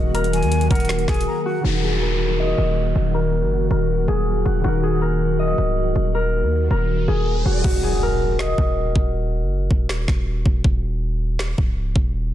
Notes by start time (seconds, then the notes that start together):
Already playing: D#1 D#3 F#3 A#3 D#4 F#4 G#4 A#4 D#5
0.14 A#4, closed hi-hat
0.24 closed hi-hat
0.33 G#5, closed hi-hat
0.42 D#2, closed hi-hat
0.52 closed hi-hat
0.61 closed hi-hat
0.70 D#1 A#4 F#5, kick, closed hi-hat
0.75 closed hi-hat
0.80 closed hi-hat
0.85 closed hi-hat
0.89 finger snap, snare, closed hi-hat
0.99 closed hi-hat
1.08 D#1 G#4 G#5, finger snap, kick, snare, closed hi-hat
1.14 closed hi-hat
1.21 closed hi-hat
1.27 A#5
1.46 F#4 F#5
1.61 D#1 D#3 F#3 A#3 D#4 F#4, downlifter
1.65 F#4 A#4
1.83 G#4
2.02 A#4
2.40 D#5
2.58 D#1
2.96 D#1
3.14 A#4
3.42 F#1
3.71 D#1 A#4
4.08 D#1 G#4
4.45 D#1 F#4
4.61 D#1 D#3 D#4 F#4
4.66 F#4 A#4
4.83 G#4
5.01 A#4
5.39 D#5
5.58 C#1
5.96 D#1
6.14 A#4, riser
6.42 D#2
6.71 D#1 A#4
7.08 D#1 G#4
7.46 D#1 F#4
7.64 D#1 F#4, kick, crash, impact
7.83 G#4
8.03 A#4
8.39 D#5, finger snap, snare
8.58 D#1, kick
8.96 D#1, kick
9.43 F#1
9.71 D#1, kick
9.89 finger snap, snare
10.08 D#1, finger snap, kick, snare
10.46 D#1, kick
10.64 D#1, kick
11.39 finger snap, snare
11.58 C#1, kick
11.96 D#1, kick